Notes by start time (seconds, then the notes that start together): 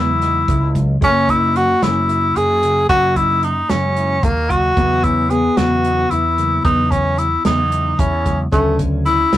Already playing: E2 C#3 F#3 G#3 B3 E4
0.22 D#4, snare, closed hi-hat
0.48 C#2 E4, kick, closed hi-hat
0.75 C#3 F#3 G#3, kick, closed hi-hat
1.01 F#2 C#3 F#3 A#3 C#4, kick, closed hi-hat
1.29 D#4 E4, kick, closed hi-hat
1.56 F#4, closed hi-hat
1.82 F#2 C#3 F#3 A#3 C#4 E4, snare, closed hi-hat
2.09 E4, closed hi-hat
2.36 F#2 F#4 G#4, closed hi-hat
2.63 C#3 F#3 A#3, closed hi-hat
2.89 F#2 C#3 F#3 A#3 C#4 F#4, kick, closed hi-hat
3.16 D#4 E4, kick, closed hi-hat
3.43 D#4, closed hi-hat
3.69 F#2 C#3 F#3 G#3 C#4, snare, closed hi-hat
3.96 E4, closed hi-hat
4.23 D#2 A#3 F#4, kick, closed hi-hat
4.50 C#3 F#3 A#3 F#4, kick, closed hi-hat
4.77 E2 C#3 F#3 B3, kick, closed hi-hat
5.04 C#4 E4, kick, closed hi-hat
5.30 B3 G#4, closed hi-hat
5.57 E2 C#3 F#3 B3 C#4 F#4, snare, closed hi-hat
5.84 D#4, closed hi-hat
6.11 E2 E4, closed hi-hat
6.37 C#3 F#3 A#3, closed hi-hat
6.64 E2 C#3 F#3 B3 D#4, kick, closed hi-hat
6.91 C#4, kick, closed hi-hat
7.18 E4, closed hi-hat
7.45 E2 C#3 F#3 B3 D#4, snare, closed hi-hat
7.72 D#4, closed hi-hat
7.99 E2 C#4 E4, kick, closed hi-hat
8.26 C#3 F#3 G#3, kick, closed hi-hat
8.52 D2 C#3 F#3 A3 B3 C#4, kick, closed hi-hat
8.79 D3, kick, closed hi-hat
9.06 E4, closed hi-hat
9.33 D2 C#3 F#3 B3 C#4, snare, closed hi-hat